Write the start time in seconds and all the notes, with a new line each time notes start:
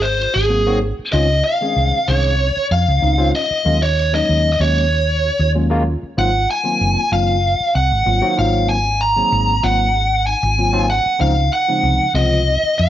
Already playing: G#1
0.02 C5
0.19 C4 F4
0.34 G#1 C4 F#4 G#4
0.49 D#3 F#3 A#3 C4 F#4
0.66 D#3 F#3 A#3 C4 F#4
0.82 C4 G#4
0.99 muted fingered electric bass stroke
1.12 C#2 D#3 G#3 C4 C#4 F4 D#5
1.30 C#4 G#4
1.44 F5
1.61 D#3 G#3 C4 C#4 G#4
1.76 C2
2.08 C2 D#3 G#3 C4 C#4 G#4 C#5
2.40 C#4 D#4
2.56 muted fingered electric bass stroke
2.71 F2 C#4 G#4 F5
2.87 C#2 C#4 F4
3.02 C#2 D#3 G#3 C4 C#4 D#4
3.18 D#3 G#3 C4 C#4 F4
3.33 C#4 D#4 D#5
3.51 muted fingered electric bass stroke
3.65 D#2 F#3 G#3 A#3 C#4 F4
3.81 C#4 F#4 C#5
4.13 F#3 G#3 A#3 C#4 D#4 D#5
4.29 D#2
4.52 D#5
4.60 D#2 F#3 G#3 A#3 C#4 F#4 C#5
4.92 C#4 F#4
5.24 C#4 F#4
5.39 D#2 C#4 F4
5.55 F#3 G#3 A#3 C#4 F4
5.70 F#3 G#3 A#3 C#4 F4
5.85 C#4 F4
6.03 muted fingered electric bass stroke
6.17 G#1 D#3 F#3 A#3 C4 F4 F#5
6.51 G#5
6.64 D#3 F#3 A#3 C4 F4
6.81 F#1
7.11 F#1 D#3 F#3 A#3 C4 F4 F5
7.60 muted fingered electric bass stroke
7.74 C2 C4 F4 F#5
7.91 G#1 C4 F4
8.05 G#1 D#3 F#3 A#3 C4 F4
8.21 D#3 F#3 A#3 C4 F#4
8.36 G#1 D#3 F#3 A#3 C4 F4 F5
8.69 G#5
8.85 C4 F#4
9.01 A#5
9.16 D#3 F#3 A#3 C4 G#4
9.32 G#1
9.63 G#1 D#3 F#3 A#3 C4 F4 F#5
9.95 C4 G#4
10.27 C4 D#4 G#5
10.43 G#1 C4 F4
10.58 D#3 F#3 A#3 C4 F4
10.73 D#3 F#3 A#3 C4 F4
10.89 C4 G#4 F#5
11.06 muted fingered electric bass stroke
11.19 C#2 C#3 F3 G#3 C4 D#4 F5
11.37 C4 D#4
11.53 F#5
11.68 C#3 F3 G#3 C4 D#4
11.83 C2
12.14 C2 C#3 F3 G#3 C4 F4 D#5
12.47 C4 D#4
12.63 muted fingered electric bass stroke
12.78 F2 C4 D#4 F5